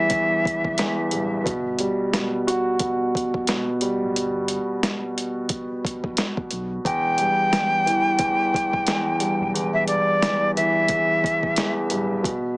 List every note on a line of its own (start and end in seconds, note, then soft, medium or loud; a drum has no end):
0.00 0.11 E2 medium
0.00 1.13 G2 medium
0.00 1.13 E3 medium
0.00 0.94 E5 medium
0.10 0.77 E2 medium
0.10 kick medium
0.10 closed hi-hat medium
0.45 kick medium
0.45 closed hi-hat medium
0.65 0.76 D1 medium
0.65 kick medium
0.78 1.46 E2 medium
0.78 snare loud
0.78 closed hi-hat loud
1.11 1.39 D1 loud
1.11 1.46 G2 medium
1.11 closed hi-hat medium
1.44 1.89 G1 loud
1.44 2.12 B2 medium
1.44 kick loud
1.44 closed hi-hat medium
1.79 3.14 G3 medium
1.79 closed hi-hat medium
2.13 2.79 B2 medium
2.13 snare loud
2.13 closed hi-hat medium
2.47 3.82 F#4 medium
2.47 closed hi-hat medium
2.79 3.47 B2 medium
2.79 kick medium
2.79 closed hi-hat loud
3.15 kick medium
3.15 closed hi-hat medium
3.34 3.46 F#1 medium
3.34 kick medium
3.47 4.15 B2 medium
3.47 snare loud
3.47 closed hi-hat loud
3.81 4.15 G3 medium
3.81 closed hi-hat medium
4.01 4.13 D1 medium
4.16 4.58 G1 loud
4.16 closed hi-hat medium
4.48 closed hi-hat medium
4.83 snare loud
4.83 closed hi-hat medium
5.18 closed hi-hat medium
5.49 kick medium
5.49 closed hi-hat loud
5.85 kick medium
5.85 closed hi-hat medium
6.04 6.15 F#1 medium
6.04 kick medium
6.17 snare loud
6.17 closed hi-hat loud
6.37 kick loud
6.51 6.79 B1 loud
6.51 closed hi-hat medium
6.85 7.28 E1 loud
6.85 7.51 E2 medium
6.85 9.51 G5 loud
6.85 kick loud
6.85 closed hi-hat medium
7.18 8.54 G2 medium
7.18 closed hi-hat medium
7.53 8.18 E2 medium
7.53 snare loud
7.53 closed hi-hat medium
7.86 9.21 E3 medium
7.86 closed hi-hat medium
8.19 8.85 E2 medium
8.19 kick medium
8.19 closed hi-hat medium
8.54 kick medium
8.54 closed hi-hat medium
8.73 8.85 D1 medium
8.73 kick medium
8.87 9.53 E2 medium
8.87 snare loud
8.87 closed hi-hat loud
9.20 9.87 G2 medium
9.20 closed hi-hat medium
9.41 9.52 B1 medium
9.54 9.98 E1 loud
9.54 10.21 E2 medium
9.54 closed hi-hat medium
9.73 9.87 E5 medium
9.87 11.23 G2 medium
9.87 10.51 D5 medium
9.87 closed hi-hat medium
10.22 10.88 E2 medium
10.22 snare loud
10.22 closed hi-hat medium
10.56 11.91 E3 medium
10.56 11.72 E5 medium
10.56 closed hi-hat medium
10.88 11.56 E2 medium
10.88 kick medium
10.88 closed hi-hat loud
11.24 kick loud
11.24 closed hi-hat medium
11.43 11.55 D1 loud
11.43 kick medium
11.56 12.25 E2 medium
11.56 snare loud
11.56 closed hi-hat loud
11.90 12.18 D1 loud
11.90 12.25 G2 medium
11.90 closed hi-hat medium
12.23 12.57 B2 medium
12.23 kick loud
12.23 closed hi-hat medium